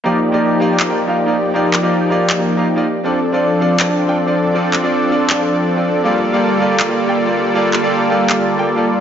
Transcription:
0.04 F3 A#3 D#4 F4 G4 D5
0.32 F3 A#3 D#4 F4 G4 D5
0.60 A#3 D#4 F4 G4 D5
0.80 clap
0.88 A#3 D#4 F4 G4 D5
1.07 A#3 D#4 F4 G4 F5
1.26 A#3 D#4 F4 G4 D5
1.54 F3 A#3 D#4 F4 G4 D5
1.73 clap
1.82 F3 A#3 D#4 F4 G4 D5
2.10 A#3 D#4 F4 G4 D5
2.30 clap
2.38 A#3 D#4 F4 G4 D5
2.57 A#3 D#4 F4 G4 F5
2.76 A#3 D#4 F4 G4 D5
2.86 C4 D4 A4
3.04 F3 C4 D4 F4 A4 D5
3.32 F3 C4 D4 F4 A4 D5
3.60 C4 D4 F4 A4 D5
3.80 clap
3.88 C4 D4 F4 A4 D5
4.07 C4 D4 F4 A4 G5
4.26 C4 D4 F4 A4 D5
4.54 F3 C4 D4 F4 A4 D5
4.73 clap
4.82 F3 C4 D4 F4 A4 D5
5.10 C4 D4 F4 A4 D5
5.30 clap
5.39 C4 D4 F4 A4 D5
5.76 C4 D4 F4 A4 D5
6.04 D3 G3 A#3 F4 G4 A4 D5
6.32 G3 A#3 F4 G4 A4 D5
6.60 A#3 F4 G4 A4 D5
6.80 clap
6.88 A#3 F4 G4 A4 D5
7.07 A#3 F4 G4 A4 G5
7.26 A#3 F4 G4 A4 D5
7.54 G3 A#3 F4 G4 A4 D5
7.73 clap
7.82 G3 A#3 F4 G4 A4 D5
8.10 A#3 F4 G4 A4 D5
8.30 clap
8.38 A#3 F4 G4 A4 D5
8.57 A#3 F4 G4 A4 G5
8.76 A#3 F4 G4 A4 D5

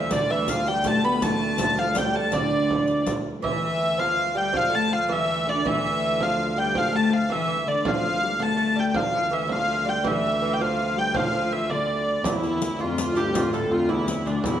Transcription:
Already playing: D2 E3 F3 E5
0.11 D3 D5, riq, frame drum
0.29 E3 E5, frame drum
0.48 F3 F5, riq, frame drum
0.66 G3 G5, riq
0.84 A3 A5, riq, frame drum
1.03 B3 B5, frame drum
1.22 A3 A5, riq, frame drum
1.41 frame drum
1.58 riq, frame drum
1.77 F3 F5, riq
1.95 G3 G5, riq, frame drum
2.14 A3 A5, frame drum
2.32 D3 D5, riq, frame drum
2.52 frame drum
2.71 frame drum
2.87 riq, frame drum
3.06 riq, frame drum
3.42 D2 E3 E5, frame drum
3.81 frame drum
3.97 F3 F5, frame drum
4.18 frame drum
4.35 G3 G5, frame drum
4.53 F3 F5, frame drum
4.70 A3
4.75 A3 A5
4.89 F3 F5, frame drum
5.08 E3, frame drum
5.13 E5
5.29 frame drum
5.47 D3 D5, frame drum
5.65 E3 E5, frame drum
6.02 frame drum
6.21 F3 F5, frame drum
6.39 frame drum
6.57 G3 G5
6.75 F3 F5, frame drum
6.93 A3 A5
7.10 F3 F5, frame drum
7.29 E3 E5, frame drum
7.47 E3, frame drum
7.66 D3 D5, frame drum
7.84 D2 F3 F5, frame drum
8.22 G3, frame drum
8.39 A3 A5, frame drum
8.57 A3, frame drum
8.76 G3 G5, frame drum
8.89 G5
8.94 F3 F5, frame drum
9.13 F3
9.30 E3 E5, frame drum
9.47 F3, frame drum
9.52 F5
9.69 frame drum
9.85 G3
9.89 G5
10.04 E3 E5, frame drum
10.39 E3
10.53 G5
10.60 F3 F5, frame drum
10.78 frame drum
10.96 G3 G5, frame drum
11.15 F3 F5, frame drum
11.33 F3, frame drum
11.52 E3 E5
11.70 D3 D5, frame drum
12.24 D2 E2 E4, riq, frame drum
12.44 riq
12.62 riq, frame drum
12.79 F2 F4, frame drum
12.98 F2, riq, frame drum
13.15 G2 G4, riq
13.34 F2 F4, riq, frame drum
13.53 A2 A4, riq
13.70 F2 F4, frame drum
13.89 E2 E4, frame drum
14.07 riq, frame drum
14.26 D2 D4, riq
14.44 E2 E4, riq, frame drum

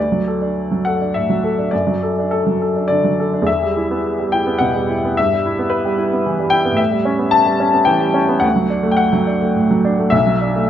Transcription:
Already playing: D2 D5
0.12 F#3
0.28 A4
0.42 D4
0.71 F#3
0.85 A4 F#5
1.01 D4
1.14 A2 E5
1.30 F#3
1.44 A4
1.58 D4
1.71 F#2 D5
1.87 F#3
2.03 A4
2.19 D4
2.31 A4
2.47 F#3
2.62 A4
2.76 D4
2.88 D3 D5
3.04 F#3
3.20 A4
3.34 D4
3.42 E2
3.47 E5
3.62 G3
3.77 E4
3.91 B3
4.19 G3
4.32 E4 G5
4.46 B3
4.58 B2 F#5
4.75 G3
4.89 E4
5.05 B3
5.17 G2 E5
5.33 G3
5.46 E4
5.59 B3
5.70 B4
5.85 G3
5.98 E4
6.12 B3
6.26 E3
6.39 G3
6.50 E4 G5
6.65 B3
6.71 A2
6.77 E5
6.91 G3
7.05 C#4
7.19 B3
7.31 A5
7.46 G3
7.60 C#4
7.73 B3
7.85 E3 G5
8.01 G3
8.14 C#4
8.29 B3
8.40 D2 F#5
8.56 F#3
8.70 D4
8.83 A3
8.91 G5
8.97 F#5
9.13 F#3
9.27 D4
9.42 A3
9.55 A2
9.71 F#3
9.85 D4
9.99 A3
10.10 B1 E5
10.26 F#3
10.41 D4
10.56 A3

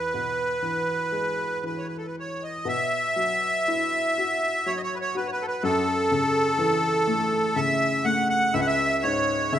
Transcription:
Already playing: E2 B4
0.14 B2
0.62 E3
1.12 G#3
1.64 E3 B4
1.78 C#5
1.88 B4
1.98 A4
2.07 B4
2.19 C#5
2.43 D#5
2.65 B2 E5
3.16 F#3
3.68 E4
4.18 F#4
4.66 F#3 C#5
4.77 D#5
4.83 C#5
4.94 B4
5.01 C#5
5.15 F#4 B4
5.27 C#5
5.32 B4
5.42 A4
5.48 B4
5.63 F#2 A4
6.11 C#3
6.58 E3
7.07 A3
7.56 C#3 E5
8.05 A3 F#5
8.30 F#5
8.54 C#2 E5
8.61 F#5
8.67 E5
9.03 G#2 C#5
9.53 C#3 E5

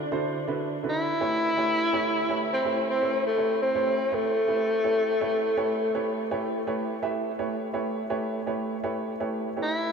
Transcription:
0.11 D3 E4 F#4 A4 C5
0.47 D3 E4 F#4 A4 B4
0.83 D3 E4 F#4 A4 B4
0.89 E4
1.20 A3 E4 G4 B4 C#5
1.57 A3 E4 G4 B4 C#5
1.92 A3 E4 G4 B4 C#5
2.29 A3 E4 G4 B4 C#5
2.54 C4
2.64 A3 E4 G4 B4 E5
2.90 C4
3.02 A3 E4 G4 B4 C#5
3.27 A3
3.37 A3 E4 G4 B4 C#5
3.62 C4
3.75 A3 E4 G4 B4 C#5
4.12 A3 E4 G4 B4 C#5
4.47 A3 E4 G4 B4 E5
4.84 A3 E4 G4 B4 C#5
5.21 A3 E4 G4 B4 C#5
5.57 A3 E4 G4 B4 C#5
5.94 A3 E4 G4 B4 C#5
6.31 A3 E4 G4 B4 C#5
6.67 A3 E4 G4 B4 C#5
7.03 A3 E4 G4 B4 E5
7.39 A3 E4 G4 B4 C#5
7.73 A3 E4 G4 B4 C#5
8.10 A3 E4 G4 B4 C#5
8.46 A3 E4 G4 B4 C#5
8.83 A3 E4 G4 B4 C#5
9.20 A3 E4 G4 B4 C#5
9.57 A3 E4 G4 B4 C#5
9.63 E4

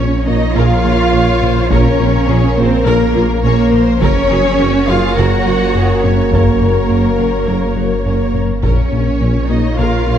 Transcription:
Already playing: A#1 C#3 F3 A#3 C#4 F4 A#4 C#5
0.00 A#2
0.27 A#1 A#3 D#4 F4 D#5
0.55 A#1 A#2 F4 G#4 A#4 F5
0.84 A#1 A#3 F4 A#4
1.13 A#1 A#2 C#4 C#5
1.42 A#2 C5, taiko mid
1.70 A#1 A#2 C#4 A#4 C#5, taiko
2.00 A#1 A#2 F4
2.28 A#1 A#2 C#4 G#4
2.57 A#1 A#3 C4 F4 A#4 C5
2.86 A#1 A#2 A#3 A#4
3.15 A#1 A#3 F4
3.44 A#1 A#2 A#3 C#4 A#4 C#5
3.73 A#2 C5, taiko mid
4.01 F#1 F#2 C#3 F#3 A#3 C#4 F#4 A#4 C#5, taiko
4.30 F#1 F#2 F#4 G#4
4.59 F#1 F#2 C#4 F#4
4.88 F#1 F#3 F4 F#4 G#4 F5
5.17 F#1 F#2 F#4 A#4 F#5
5.46 F#1 F#3 F#4
5.75 F#1 F#2 C#4 G#4
6.03 F#2 C#4 F#4 C#5, taiko mid
6.32 F#1 F#2 A#3 A#4, taiko
6.61 F#1 F#2 F#4
6.90 F#1 F#2 C#4
7.19 F#1 F#3 F#4
7.47 F#1 F#2 A#4
7.76 F#1 F#3 F#4
8.05 F#1 F#2 A#3 C#4 A#4
8.34 F#2, taiko mid
8.63 A#1 A#2 C#3 F3 A#3 C#4 F4 A#4 C#5, taiko
8.92 A#1 A#2 F4
9.21 A#1 A#2 C#4
9.50 A#1 A#3 D#4 F4 D#5
9.78 A#1 A#2 F4 A#4 F5
10.07 A#1 A#3 F4

